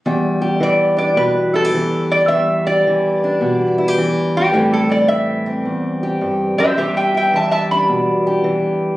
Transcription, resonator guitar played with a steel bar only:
0.63 0.97 D5 medium
0.98 1.16 D5 medium
1.17 1.53 B4 medium
1.55 2.09 A4 medium
2.12 2.29 D5 medium
2.28 2.65 E5 medium
2.67 3.75 D5 medium
4.37 4.72 G4 medium
4.73 4.90 A4 medium
4.92 5.08 D5 medium
5.08 5.44 E5 medium
6.58 6.78 C5 medium
6.58 6.76 E5 medium
6.78 6.95 G4 medium
6.78 6.95 E5 medium
6.97 7.14 E5 medium
6.97 7.14 G5 medium
7.17 7.33 E5 medium
7.17 7.34 G5 medium
7.36 7.50 E5 medium
7.36 7.51 A5 medium
7.51 7.69 E5 medium
7.51 7.70 A5 medium
7.71 8.01 B5 medium

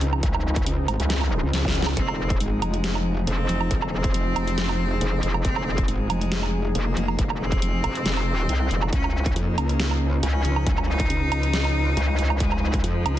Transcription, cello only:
1.97 2.24 C4 loud
2.40 3.19 G#3 loud
3.27 3.84 C4 loud
3.93 5.37 C4 loud
5.45 5.72 C4 loud
5.88 6.67 G#3 loud
6.75 7.32 A#3 loud
7.40 8.84 C4 loud
8.93 9.20 C#4 loud
9.36 10.15 A#3 loud
10.23 10.80 C#4 loud
10.88 12.32 D#4 loud
12.40 12.68 G#3 loud
12.84 13.19 F3 loud

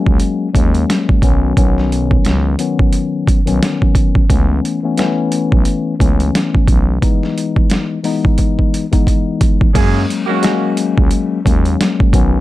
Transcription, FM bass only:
0.07 0.19 C#2 medium
0.55 0.85 D#2 loud
1.22 1.53 B1 loud
1.57 2.18 B1 loud
2.26 2.56 C#2 loud
3.48 3.60 B1 medium
4.30 4.60 C#2 loud
5.52 5.65 B1 medium
6.00 6.31 C#2 loud
6.68 6.99 B1 medium
9.75 10.06 F#2 loud
10.98 11.10 C#2 medium
11.46 11.76 D#2 loud
12.13 12.40 B1 loud

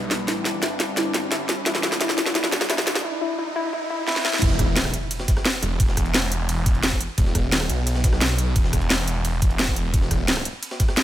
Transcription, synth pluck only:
0.28 0.42 E4 medium
0.63 0.72 E5 medium
0.97 1.11 E4 medium
1.32 1.41 E5 medium
1.66 1.80 E4 medium
2.00 2.14 E4 medium
2.35 2.49 E4 medium
2.70 2.83 E4 medium
3.04 3.18 E4 medium
3.21 3.35 E4 medium
3.38 3.52 E4 medium
3.56 3.69 E4 medium
3.73 3.87 E4 medium
3.90 4.04 E4 medium
4.07 4.21 E4 medium
4.25 4.38 E4 medium

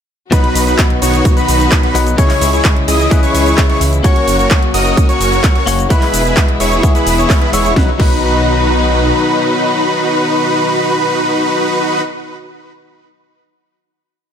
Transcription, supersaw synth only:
0.32 0.64 D#4 loud
0.32 0.64 F#4 medium
0.32 0.64 B4 loud
0.67 0.87 D#4 medium
0.67 0.87 F#4 medium
0.67 0.87 B4 medium
1.02 1.34 D#4 medium
1.02 1.34 F#4 medium
1.02 1.34 C#5 medium
1.37 1.80 D#4 loud
1.37 1.80 F#4 medium
1.37 1.81 B4 loud
1.83 1.96 D#4 medium
1.83 1.96 F#4 medium
1.83 1.96 B4 medium
2.18 2.50 E4 loud
2.18 2.50 G#4 medium
2.18 2.50 C#5 loud
2.53 2.73 E4 medium
2.53 2.73 G#4 medium
2.53 2.73 C#5 medium
2.88 3.20 E4 medium
2.88 3.20 G#4 medium
2.88 3.20 D#5 medium
3.23 3.67 E4 loud
3.23 3.67 G#4 medium
3.23 3.67 C#5 loud
3.69 3.82 E4 medium
3.69 3.82 G#4 medium
3.69 3.82 C#5 medium
4.04 4.36 F#4 loud
4.04 4.36 A#4 medium
4.04 4.36 C#5 loud
4.39 4.59 F#4 medium
4.39 4.59 A#4 medium
4.39 4.59 C#5 medium
4.74 5.06 F#4 medium
4.74 5.06 A#4 medium
4.74 5.06 D#5 loud
5.09 5.53 F#4 loud
5.09 5.53 A#4 medium
5.09 5.53 C#5 loud
5.55 5.68 F#4 medium
5.55 5.68 A#4 medium
5.55 5.68 C#5 medium
5.90 6.22 E4 loud
5.90 6.22 G#4 medium
5.90 6.22 B4 loud
6.25 6.46 E4 medium
6.25 6.46 G#4 medium
6.25 6.46 B4 medium
6.60 6.92 E4 medium
6.60 6.92 G#4 medium
6.60 6.92 C#5 medium
6.95 7.16 E4 medium
6.95 7.16 G#4 medium
6.95 7.16 B4 loud
7.18 7.39 E4 medium
7.18 7.39 G#4 medium
7.18 7.39 C#5 medium
7.42 7.50 E4 medium
7.42 7.50 G#4 medium
7.42 7.50 B4 loud
7.53 7.74 E4 loud
7.53 7.74 G#4 medium
7.53 7.74 C#5 loud
7.76 7.89 D#4 medium
7.76 7.89 F#4 medium
7.76 7.89 B4 medium
8.00 12.01 D#4 medium
8.00 12.01 F#4 medium
8.00 12.01 B4 loud

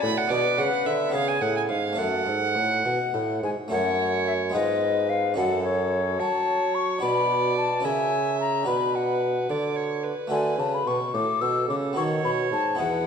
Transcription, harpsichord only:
0.00 0.26 B3 medium
0.00 0.27 D4 medium
0.00 0.28 F#4 medium
0.05 0.29 A2 medium
0.27 1.08 B3 medium
0.27 1.10 D4 medium
0.27 1.11 G#4 medium
0.31 0.56 B2 medium
0.59 0.84 C#3 medium
0.86 1.11 D3 medium
1.10 1.94 B3 soft
1.10 1.93 C#4 soft
1.10 1.95 G#4 medium
1.14 1.39 C#3 medium
1.41 1.67 A2 medium
1.69 1.95 G#2 medium
1.93 2.24 A3 soft
1.93 2.25 C#4 soft
1.93 3.66 A4 soft
1.98 2.24 F#2 soft
2.27 2.53 G#2 soft
2.55 2.82 A2 soft
2.85 3.11 B2 soft
3.14 3.40 A2 medium
3.44 3.69 G#2 medium
3.68 4.50 A3 medium
3.68 4.51 C#4 medium
3.68 4.52 A4 medium
3.72 4.51 F#2 medium
4.50 5.32 G#3 medium
4.50 5.33 B3 medium
4.50 5.34 F4 soft
4.54 5.34 G#2 medium
4.54 5.35 G#4 medium
5.34 6.97 C#4 soft
5.34 6.98 F#4 medium
5.34 6.98 A4 soft
5.39 6.17 F#2 medium
6.21 6.99 F#3 medium
6.98 7.80 D4 soft
6.98 7.81 F#4 soft
6.98 7.82 B4 soft
7.03 7.81 B2 medium
7.80 8.62 C#4 soft
7.80 8.63 E4 soft
7.80 8.64 A#4 soft
7.85 8.63 C#3 medium
8.63 10.25 D4 soft
8.63 10.25 F#4 soft
8.63 10.26 B4 soft
8.67 9.45 B2 soft
9.50 10.27 D3 medium
10.27 10.56 A3 soft
10.27 11.91 F#4 soft
10.27 11.92 A4 soft
10.32 10.56 D3 medium
10.60 10.84 C#3 medium
10.88 11.12 B2 medium
11.15 11.39 A2 medium
11.42 11.66 B2 medium
11.70 11.95 C#3 medium
11.93 12.74 B3 soft
11.93 12.75 F#4 soft
11.93 12.76 A4 soft
11.98 12.22 D#3 soft
12.25 12.49 B2 soft
12.53 12.77 G#2 soft
12.75 13.03 B3 soft
12.75 13.07 E4 soft
12.75 13.07 G#4 soft
12.79 13.04 E2 soft

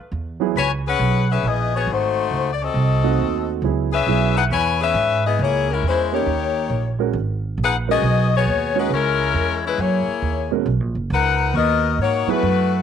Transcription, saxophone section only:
0.57 0.70 F#4 medium
0.57 0.70 B4 medium
0.57 0.70 C#5 medium
0.57 0.70 G#5 medium
0.87 1.27 C#4 medium
0.87 1.26 G#4 medium
0.87 1.26 B4 medium
0.87 1.26 F#5 medium
1.32 1.45 C#4 medium
1.32 1.45 G#4 medium
1.32 1.45 B4 medium
1.32 1.45 E5 medium
1.47 1.74 B3 medium
1.47 1.73 E4 medium
1.47 1.73 G#4 medium
1.47 1.74 D#5 medium
1.75 1.88 B3 medium
1.75 1.88 F#4 medium
1.75 1.88 G#4 medium
1.75 1.88 C#5 medium
1.91 2.53 A3 medium
1.91 2.53 D#4 medium
1.91 2.53 F#4 medium
1.91 2.53 C5 medium
2.53 2.61 D5 medium
2.63 3.50 C4 medium
2.63 3.50 F#4 medium
2.63 3.49 A4 medium
2.63 3.50 D#5 medium
3.92 4.33 C#4 medium
3.92 4.33 G#4 medium
3.92 4.33 B4 medium
3.92 4.33 E5 loud
4.37 4.44 D#4 medium
4.37 4.44 G#4 medium
4.37 4.44 B4 medium
4.37 4.44 F#5 medium
4.51 4.78 E4 medium
4.51 4.78 B4 medium
4.51 4.78 C#5 medium
4.51 4.78 G#5 loud
4.81 5.22 C#4 medium
4.81 5.22 G#4 medium
4.81 5.21 B4 medium
4.81 5.22 E5 medium
5.26 5.40 B3 medium
5.26 5.39 E4 medium
5.26 5.40 G#4 medium
5.26 5.39 D#5 medium
5.42 5.67 A#3 medium
5.42 5.67 E4 medium
5.42 5.67 G#4 medium
5.42 5.67 C#5 medium
5.70 5.85 G#3 medium
5.70 5.85 C#4 medium
5.70 5.85 E4 medium
5.70 5.85 A#4 medium
5.86 6.12 G#3 medium
5.86 6.11 C#4 medium
5.86 6.12 E4 medium
5.86 6.12 C5 medium
6.14 6.97 A#3 medium
6.14 6.97 D#4 medium
6.14 6.97 G4 medium
6.14 6.97 C#5 medium
7.63 7.75 D#4 medium
7.63 7.75 G#4 medium
7.63 7.76 B4 medium
7.63 7.76 F#5 medium
7.91 8.30 B3 medium
7.91 8.30 F#4 medium
7.91 8.30 G#4 medium
7.91 8.30 D#5 loud
8.36 8.75 B3 medium
8.36 8.75 F#4 medium
8.36 8.75 G#4 medium
8.36 8.75 C#5 medium
8.79 8.93 G#3 medium
8.79 8.93 D#4 medium
8.79 8.93 F#4 medium
8.79 8.93 B4 medium
8.93 9.61 G#3 medium
8.93 9.61 C#4 medium
8.93 9.61 E4 medium
8.93 9.61 A#4 medium
9.65 9.79 G#3 medium
9.65 9.79 C#4 medium
9.65 9.79 E4 medium
9.65 9.79 B4 medium
9.80 10.52 A#3 medium
9.80 10.52 E4 medium
9.80 10.52 G#4 medium
9.80 10.52 C#5 medium
11.12 11.53 D#4 medium
11.12 11.53 A#4 medium
11.12 11.53 B4 medium
11.12 11.53 F#5 loud
11.56 11.96 B3 medium
11.56 11.96 F#4 medium
11.56 11.96 A#4 medium
11.56 11.97 D#5 loud
12.01 12.28 A#3 medium
12.01 12.28 D#4 medium
12.01 12.28 F#4 medium
12.01 12.29 C#5 medium
12.30 12.82 A3 medium
12.30 12.82 E4 medium
12.30 12.82 F#4 medium
12.30 12.82 B4 medium

